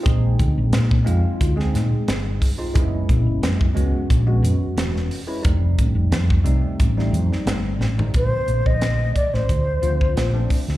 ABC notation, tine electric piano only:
X:1
M:4/4
L:1/16
Q:"Swing 16ths" 1/4=89
K:Fdor
V:1 name="Tine electric piano"
[A,CEA]4- [A,CEA] z [A,CEF]3 [A,CEA]4- [A,CEA] z [A,CEF] | [A,_C_D_F]4- [A,CDF] z [A,CD_G]3 [A,CDG]4- [A,CDG] z [A,CDF] | [G,=A,CE]4- [G,A,CE] z [G,A,CE]3 [G,A,CE]4- [G,A,CE] z [G,A,CE] | [K:Bb] [D,F,A,C]6- [D,F,A,C] z3 [F,A,CF]3 [F,A,CD]3 |]